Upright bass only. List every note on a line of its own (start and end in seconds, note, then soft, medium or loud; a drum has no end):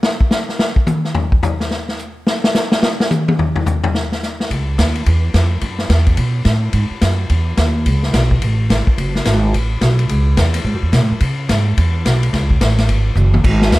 4.51 4.78 C#2 medium
4.78 5.05 D#2 loud
5.06 5.33 E2 medium
5.34 5.61 F2 loud
5.62 5.89 F#2 medium
5.89 6.17 E2 loud
6.17 6.45 B2 medium
6.45 6.72 A2 loud
6.73 6.89 G#2 loud
6.90 muted upright bass stroke soft
7.02 7.29 F#2 loud
7.30 7.57 E2 medium
7.58 7.85 D#2 loud
7.86 8.13 C#2 medium
8.13 8.40 B1 loud
8.42 8.69 A1 medium
8.70 8.86 G#1 loud
8.97 9.25 F#1 medium
9.25 9.52 G#1 loud
9.54 9.81 A1 medium
9.81 10.08 B1 loud
10.09 10.36 C#2 medium
10.37 10.64 E2 loud
10.64 10.73 G#2 loud
10.73 10.82 F#2 medium
10.82 10.92 E2 medium
10.92 11.01 B2 loud
11.01 11.10 A2 medium
11.11 11.20 F#2 medium
11.21 11.48 C#3 medium
11.49 11.76 G#2 loud
11.77 12.04 E2 medium
12.05 12.32 B1 loud
12.33 12.60 C#2 loud
12.61 12.88 A1 medium
12.88 13.15 G#1 medium
13.15 13.43 F#1 loud
13.44 13.71 G#1 loud
13.72 13.79 D#2 loud